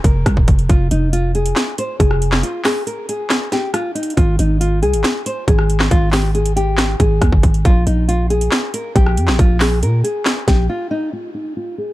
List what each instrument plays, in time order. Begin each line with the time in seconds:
0.04 808-style bass F1, nylon-string guitar A#4, kick, closed hi-hat
0.26 808-style bass C2, kick, cross-stick, closed hi-hat
0.37 808-style bass D#1, kick
0.48 808-style bass F1, kick, closed hi-hat
0.59 closed hi-hat
0.69 808-style bass F1, nylon-string guitar F4, kick, closed hi-hat
0.91 808-style bass F1, nylon-string guitar D#4, closed hi-hat
1.13 nylon-string guitar F4, closed hi-hat
1.35 nylon-string guitar G#4, closed hi-hat
1.46 closed hi-hat
1.56 snare, clap, closed hi-hat
1.78 nylon-string guitar C5, closed hi-hat
2.00 808-style bass F1, nylon-string guitar G#4, kick, closed hi-hat
2.11 cross-stick
2.22 closed hi-hat
2.32 snare, clap
2.43 nylon-string guitar F4, closed hi-hat
2.64 nylon-string guitar G#4, snare, clap, open hi-hat
2.87 nylon-string guitar A#4, closed hi-hat
3.09 nylon-string guitar G#4, closed hi-hat
3.30 snare, clap, closed hi-hat
3.52 nylon-string guitar G4, snare, closed hi-hat
3.74 nylon-string guitar F4, cross-stick, closed hi-hat
3.95 nylon-string guitar D#4, closed hi-hat
4.03 closed hi-hat
4.10 closed hi-hat
4.17 808-style bass G#1, nylon-string guitar F4, kick, closed hi-hat
4.39 808-style bass G#1, nylon-string guitar D#4, closed hi-hat
4.61 nylon-string guitar F4, closed hi-hat
4.82 808-style bass C2, nylon-string guitar G#4, closed hi-hat
4.93 808-style bass G#1, closed hi-hat
5.04 snare, clap, closed hi-hat
5.26 nylon-string guitar C5, closed hi-hat
5.48 808-style bass G#1, nylon-string guitar G#4, kick, closed hi-hat
5.59 cross-stick
5.70 closed hi-hat
5.80 snare, clap
5.91 808-style bass G#1, nylon-string guitar F4, kick, closed hi-hat
6.12 nylon-string guitar G4, snare, clap, open hi-hat
6.35 nylon-string guitar G#4, closed hi-hat
6.46 closed hi-hat
6.56 nylon-string guitar G4, closed hi-hat
6.77 snare, clap, closed hi-hat
7.00 808-style bass G#1, nylon-string guitar G#4, kick, closed hi-hat
7.22 808-style bass D#2, kick, cross-stick, closed hi-hat
7.32 808-style bass G1, kick
7.43 808-style bass G#1, kick, closed hi-hat
7.54 closed hi-hat
7.65 808-style bass A#1, nylon-string guitar F4, kick, closed hi-hat
7.86 808-style bass A#1, nylon-string guitar D#4, closed hi-hat
8.08 nylon-string guitar F4, closed hi-hat
8.30 nylon-string guitar G#4, closed hi-hat
8.41 closed hi-hat
8.51 snare, clap, closed hi-hat
8.74 nylon-string guitar A#4, closed hi-hat
8.95 808-style bass A#1, nylon-string guitar G4, kick, closed hi-hat
9.06 cross-stick
9.17 808-style bass F2, closed hi-hat
9.28 808-style bass A#1, snare, clap
9.39 808-style bass A#1, nylon-string guitar F4, kick, closed hi-hat
9.60 nylon-string guitar G#4, snare, clap, open hi-hat
9.83 808-style bass A#2, nylon-string guitar A#4, closed hi-hat
10.04 nylon-string guitar G#4, closed hi-hat
10.25 snare, clap, closed hi-hat
10.48 808-style bass A#1, nylon-string guitar G4, kick, snare, closed hi-hat
10.69 nylon-string guitar F4
10.91 nylon-string guitar D#4
11.13 nylon-string guitar F4
11.34 nylon-string guitar D#4
11.57 nylon-string guitar F4
11.78 nylon-string guitar G#4